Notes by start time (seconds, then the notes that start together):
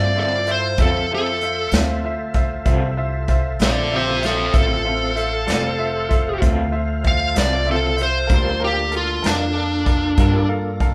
Already playing: G2 E4 F4 A4 C5 D5
0.16 D3 C4 F4 A4 C5 E5
0.20 D5
0.47 F4 C5 E5, closed hi-hat
0.51 C5
0.78 F2 D3 C4 F4 A4 C5 E5, kick, closed hi-hat
0.82 A4
1.11 C4 F4 A4 C5 E5
1.41 F4 C5 E5, closed hi-hat
1.71 D2 F4 A4 C5 E5, snare, closed hi-hat
1.76 C4 F4
2.05 F4 C5 E5
2.34 F4 C5 E5, kick, closed hi-hat
2.65 C2 D3 C4 F4 A4 C5 E5, kick, closed hi-hat
2.97 F4 C5 E5
3.28 F4 C5 E5, kick, closed hi-hat
3.59 A#1 F4 A4 C5 E5, snare, closed hi-hat
3.64 C4 D5
3.91 D3 C4 F4 G4 C5 E5
3.96 A4 C5
4.22 F4 C5 E5, snare, closed hi-hat
4.26 A4
4.53 A1 D3 C4 F4 A4 C5 E5 F5, kick, closed hi-hat
4.57 A4
4.85 C4 F4 A4 C5 E5
5.15 F4 C5 E5, closed hi-hat
5.47 F1 C4 F4 A4 C5 D5, snare, closed hi-hat
5.78 F4 C5 E5
6.09 F4 C5 E5, kick, closed hi-hat
6.40 D2 D3 C4 F4 C5 E5, kick, closed hi-hat
6.44 F4 A4
6.72 F4 C5 E5
7.03 F4 C5 E5, kick, closed hi-hat
7.07 F5
7.34 C2 F4 A4 C5 D5 E5, snare, closed hi-hat
7.40 C4 F4
7.66 D3 C4 F4 C5 E5
7.70 F4 A4
7.97 F4 C5 E5, closed hi-hat
8.03 C5
8.27 D2 G3 D4 A4 A#4 F5, kick, closed hi-hat
8.31 A#3 D4 F4 A4 A#4
8.59 D4 F4 A4 A#4 F5
8.64 G4
8.91 A4 A#4 F5, closed hi-hat
8.97 F4
9.22 F2 F4 A4 A#4 F5, snare, closed hi-hat
9.27 D4
9.54 A4 A#4 F5
9.86 A4 A#4 F5, kick, closed hi-hat
10.17 G2 G3 D4 F4 A4 A#4 F5, kick, closed hi-hat
10.49 A4 A#4 F5
10.80 A4 A#4 F5, kick, closed hi-hat